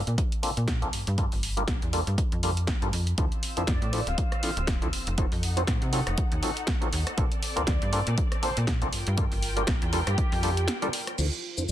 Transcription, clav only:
0.43 0.50 A#3 medium
0.43 0.50 C4 medium
0.43 0.50 D4 medium
0.43 0.50 F4 medium
0.43 0.50 A4 medium
0.82 0.87 A#3 medium
0.82 0.87 C4 medium
0.82 0.88 D4 medium
0.82 0.88 F4 medium
0.82 0.88 A4 loud
1.18 1.25 G3 medium
1.18 1.25 A#3 medium
1.18 1.25 D4 medium
1.18 1.25 F4 medium
1.18 1.25 A4 medium
1.57 1.62 G3 medium
1.57 1.62 A#3 medium
1.57 1.63 D4 medium
1.57 1.63 F4 medium
1.57 1.63 A#4 medium
1.93 2.00 G3 medium
1.93 2.00 A#3 medium
1.93 2.00 D4 medium
1.93 2.00 F4 medium
1.93 2.00 A4 medium
2.43 2.50 G3 medium
2.43 2.50 A#3 medium
2.43 2.50 D4 medium
2.43 2.50 F4 medium
2.43 2.50 A4 medium
2.82 2.88 G3 medium
2.82 2.88 A#3 medium
2.82 2.88 D4 medium
2.82 2.88 F4 medium
2.82 2.88 A4 loud
3.18 3.25 F3 medium
3.18 3.25 C4 medium
3.18 3.25 D4 medium
3.18 3.25 E4 medium
3.18 3.25 A4 medium
3.57 3.62 F3 medium
3.57 3.63 C4 medium
3.57 3.63 D4 medium
3.57 3.63 E4 medium
3.57 3.63 C5 medium
3.93 4.00 F3 medium
3.93 4.00 C4 medium
3.93 4.00 D4 medium
3.93 4.00 E4 medium
3.93 4.00 A4 medium
4.43 4.50 F3 medium
4.43 4.50 C4 medium
4.43 4.50 D4 medium
4.43 4.50 E4 medium
4.43 4.50 A4 medium
4.82 4.87 F3 medium
4.82 4.87 C4 medium
4.82 4.88 D4 medium
4.82 4.88 E4 medium
4.82 4.88 A4 loud
5.18 5.25 F#3 medium
5.18 5.25 C4 medium
5.18 5.25 D#4 medium
5.18 5.25 F4 medium
5.18 5.25 A4 medium
5.57 5.62 F#3 medium
5.57 5.62 C4 medium
5.57 5.63 D#4 medium
5.57 5.63 F4 medium
5.57 5.63 C5 medium
5.93 6.00 F#3 medium
5.93 6.00 C4 medium
5.93 6.00 D#4 medium
5.93 6.00 F4 medium
5.93 6.00 A4 loud
6.42 6.50 F#3 medium
6.42 6.50 C4 medium
6.42 6.50 D#4 medium
6.42 6.50 F4 medium
6.42 6.50 A4 medium
6.81 6.87 F#3 medium
6.81 6.87 C4 medium
6.81 6.87 D#4 medium
6.81 6.87 F4 medium
6.81 6.87 A4 loud
7.17 7.25 A#3 medium
7.17 7.25 C4 medium
7.17 7.25 D4 medium
7.17 7.25 F4 medium
7.17 7.25 A4 medium
7.56 7.62 A#3 medium
7.56 7.62 C4 medium
7.56 7.62 D4 medium
7.56 7.62 F4 medium
7.56 7.62 A#4 medium
7.93 8.00 A#3 medium
7.93 8.00 C4 medium
7.93 8.00 D4 medium
7.93 8.00 F4 medium
7.93 8.00 A4 loud
8.42 8.50 A#3 medium
8.42 8.50 C4 medium
8.42 8.50 D4 medium
8.42 8.50 F4 medium
8.42 8.50 A4 medium
8.82 8.87 A#3 medium
8.82 8.87 C4 medium
8.82 8.87 D4 medium
8.82 8.88 F4 medium
8.82 8.88 A4 loud
9.17 9.25 G3 medium
9.17 9.25 A#3 medium
9.17 9.25 D4 medium
9.17 9.25 F4 medium
9.17 9.25 A4 medium
9.56 9.62 G3 medium
9.56 9.62 A#3 medium
9.56 9.62 D4 medium
9.56 9.63 F4 medium
9.56 9.63 A#4 medium
9.93 10.00 G3 medium
9.93 10.00 A#3 medium
9.93 10.00 D4 medium
9.93 10.00 F4 medium
9.93 10.00 A4 loud
10.43 10.50 G3 medium
10.43 10.50 A#3 medium
10.43 10.50 D4 medium
10.43 10.50 F4 medium
10.43 10.50 A4 medium
10.82 10.88 G3 loud
10.82 10.88 A#3 medium
10.82 10.88 D4 medium
10.82 10.88 F4 medium
10.82 10.88 A4 loud
11.18 11.25 F3 medium
11.18 11.25 C4 medium
11.18 11.25 D4 medium
11.18 11.25 E4 medium
11.18 11.26 A4 medium
11.57 11.63 F3 medium
11.57 11.63 C4 medium
11.57 11.63 D4 medium
11.57 11.63 E4 medium
11.57 11.63 C5 medium

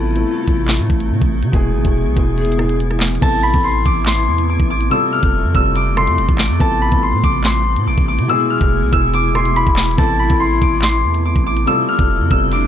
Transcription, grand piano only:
0.00 0.10 C3 loud
0.00 0.11 B3 medium
0.00 0.11 E4 medium
0.00 0.12 A4 loud
0.15 0.87 C3 medium
0.15 0.87 B3 medium
0.15 0.88 E4 medium
0.15 0.88 A4 medium
1.52 1.79 B2 medium
1.52 1.80 G#3 medium
1.52 1.80 E4 medium
1.52 1.81 G#4 loud
1.84 2.11 B2 medium
1.84 2.12 G#3 medium
1.84 2.12 E4 medium
1.84 2.12 G#4 medium
2.15 2.52 B2 medium
2.15 2.52 G#3 medium
2.15 2.53 E4 medium
2.15 2.53 G#4 medium
2.58 3.12 B2 medium
2.58 3.12 G#3 medium
2.58 3.13 E4 medium
2.58 3.13 G#4 medium
3.21 3.48 C3 loud
3.21 3.49 B3 medium
3.21 3.49 E4 medium
3.21 3.50 A4 loud
3.53 4.25 C3 medium
3.53 4.25 B3 medium
3.53 4.26 E4 medium
3.53 4.26 A4 medium
4.90 5.17 C3 medium
4.90 5.18 G3 medium
4.90 5.18 F4 medium
4.90 5.19 A4 loud
5.22 5.49 C3 medium
5.22 5.50 G3 medium
5.22 5.50 F4 medium
5.22 5.50 A4 medium
5.53 5.90 C3 medium
5.53 5.90 G3 medium
5.53 5.91 F4 medium
5.53 5.91 A4 medium
5.96 6.50 C3 medium
5.96 6.50 G3 medium
5.96 6.51 F4 medium
5.96 6.51 A4 medium
6.59 6.86 C3 loud
6.59 6.87 B3 loud
6.59 6.87 E4 medium
6.59 6.88 A4 loud
6.91 7.63 C3 medium
6.91 7.63 B3 medium
6.91 7.64 E4 medium
6.91 7.64 A4 medium
8.28 8.55 B2 loud
8.28 8.56 G#3 medium
8.28 8.56 E4 medium
8.28 8.57 G#4 loud
8.60 8.87 B2 medium
8.60 8.88 G#3 medium
8.60 8.88 E4 medium
8.60 8.88 G#4 medium
8.91 9.28 B2 medium
8.91 9.28 G#3 medium
8.91 9.29 E4 medium
8.91 9.29 G#4 medium
9.34 9.88 B2 medium
9.34 9.88 G#3 medium
9.34 9.89 E4 medium
9.34 9.89 G#4 medium
9.97 10.25 C3 loud
9.97 10.25 B3 medium
9.97 10.25 E4 medium
9.97 10.26 A4 loud
10.29 11.01 C3 medium
10.29 11.01 B3 medium
10.29 11.02 E4 medium
10.29 11.02 A4 medium
11.66 11.93 C3 loud
11.66 11.94 G3 medium
11.66 11.94 F4 medium
11.66 11.95 A4 loud
11.98 12.25 C3 medium
11.98 12.26 G3 medium
11.98 12.26 F4 medium
11.98 12.27 A4 medium
12.30 12.66 C3 medium
12.30 12.66 G3 medium
12.30 12.67 F4 medium
12.30 12.67 A4 medium

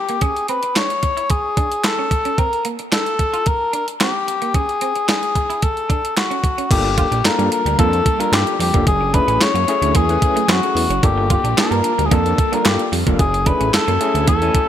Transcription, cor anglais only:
0.00 0.24 G4 medium
0.23 0.49 G#4 loud
0.49 0.78 B4 medium
0.77 1.32 C#5 loud
1.31 1.86 G#4 loud
1.85 2.40 A4 loud
2.39 2.66 A#4 loud
2.93 3.49 A4 medium
3.48 3.74 A#4 loud
3.75 3.87 A#4 medium
4.01 4.57 G4 medium
4.56 5.08 G#4 loud
5.09 5.65 G#4 medium
5.63 6.17 A4 medium
6.17 6.67 F#4 medium
6.71 6.96 G4 loud
6.99 7.27 G4 medium
7.25 7.52 A#4 loud
7.53 7.77 A#4 loud
7.79 8.22 A4 loud
8.21 8.35 A#4 loud
8.34 8.60 G4 medium
8.61 8.85 G4 medium
8.88 9.16 G#4 loud
9.14 9.44 B4 loud
9.42 9.98 C#5 loud
9.96 10.50 G#4 loud
10.51 11.06 F#4 medium
11.05 11.31 G4 loud
11.32 11.60 G4 medium
11.59 12.07 A#4 medium
12.06 12.15 G#4 medium
12.13 12.56 A4 loud
12.54 12.69 A#4 medium
12.67 12.93 G4 medium
13.20 13.49 G#4 loud
13.47 13.73 B4 loud
13.74 14.24 A4 medium
14.28 14.69 A4 loud

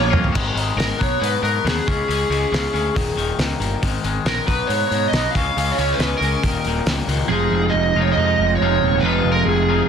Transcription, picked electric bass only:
0.00 0.11 A#1 medium
0.13 0.33 F2 medium
0.35 0.49 G#1 medium
0.55 0.70 G#1 medium
0.76 0.91 G#1 medium
1.01 1.15 B1 medium
1.21 1.36 G#2 medium
1.42 1.57 G#2 medium
1.64 1.79 D#2 medium
1.87 2.02 C#2 medium
2.09 2.23 C#2 medium
2.29 2.44 C#2 medium
2.52 2.66 C#2 medium
2.74 2.88 D2 medium
2.96 3.10 D#1 medium
3.16 3.31 D#1 medium
3.38 3.53 C#2 medium
3.60 3.74 G1 medium
3.83 3.97 G#1 medium
4.04 4.18 G#1 medium
4.25 4.40 A#1 medium
4.47 4.62 B1 medium
4.69 4.83 G#2 medium
4.91 5.05 G#2 medium
5.13 5.27 B1 medium
5.35 5.49 C#2 medium
5.57 5.71 C#2 medium
5.78 5.92 C#2 medium
5.99 6.13 C#2 medium
6.21 6.35 C#2 medium
6.44 6.57 D#1 medium
6.65 6.79 D#1 medium
6.86 7.00 C#2 medium
7.07 7.22 C#2 medium
7.29 7.47 F1 medium
7.51 7.69 F1 medium
7.74 7.91 F1 medium
7.95 8.12 F1 medium
8.17 8.34 F2 medium
8.39 8.56 F1 medium
8.61 8.78 F1 medium
8.82 8.99 D#1 medium
9.03 9.20 F1 medium
9.24 9.42 F1 medium
9.46 9.81 F1 medium

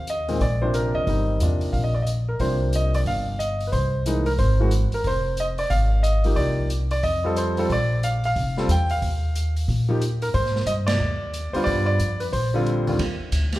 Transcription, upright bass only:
0.00 0.37 D#2 medium
0.40 0.90 A#1 medium
0.94 1.06 E2 medium
1.07 1.38 G1 medium
1.40 1.71 E2 medium
1.73 2.36 A#1 medium
2.39 3.02 C2 medium
3.06 3.69 G1 medium
3.73 4.35 C2 medium
4.38 4.89 G#1 medium
5.04 5.67 F1 medium
5.70 6.33 G#1 medium
6.36 7.00 C2 medium
7.03 7.66 F2 medium
7.69 8.32 A#1 medium
8.36 8.66 F1 medium
8.68 8.99 E2 medium
9.02 9.65 D#2 medium
9.68 10.31 A#2 medium
10.34 10.65 G#2 medium
10.66 10.97 G2 medium
11.00 11.50 D#2 medium
11.53 11.65 D2 medium
11.67 11.97 G2 medium
11.99 12.30 F2 medium
12.32 12.96 A#1 medium
12.99 13.18 D#2 medium
13.20 muted upright bass stroke soft
13.32 13.59 D2 medium

